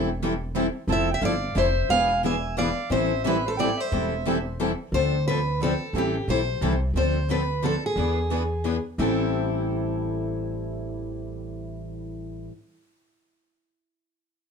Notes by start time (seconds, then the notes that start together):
Already playing: E1
0.23 E3 G3 C4 E4 A4
0.55 E3 G3 C4 E4 A4
0.87 F1 F3 C4 E4 A4 A5
0.92 E5
1.11 E5 G5
1.21 G1 F3 C4 E4 A4 D5 F5
1.55 F1 F3 C4 E4 A4 C5 E5
1.89 E1 E3 B3 D4 G#4 B4 F5 G#5
2.24 E3 B3 D4 G#4 B4 E5 G#5
2.58 E3 B3 D4 G#4 B4 D5 F5
2.90 A1 E3 G3 C4 E4 A4 C5 E5
3.24 E3 G3 C4 E4 A4 B4 E5
3.46 A4 C5
3.57 E3 G3 C4 E4 A4 D5 G5
3.77 C5 E5
3.92 E1 E3 G3 C4 E4 A4
4.27 E3 G3 C4 E4 A4
4.61 E3 G3 C4 E4 A4
4.92 D2 D3 F3 C4 A4 C5
4.96 D4
5.28 D3 F3 C4 D4 A4 B4
5.61 D3 F3 C4 D4 A4
5.93 A1 E3 G3 C4 E4 A4
5.98 G4
6.28 B1 E3 G3 C4 E4 A4 C5
6.61 C2 E3 G3 C4 E4 A4
6.94 D2 D3 F3 C4 D4 A4 C5
7.28 D3 F3 C4 D4 A4 B4
7.63 D3 F3 C4 D4 A4
7.86 G#4
7.96 E2 E3 B3 D4 G#4 B4
8.31 E3 B3 D4 G#4 B4
8.65 E3 B3 D4 G#4 B4
8.98 A1 A2 E3 G3 C4 E4 A4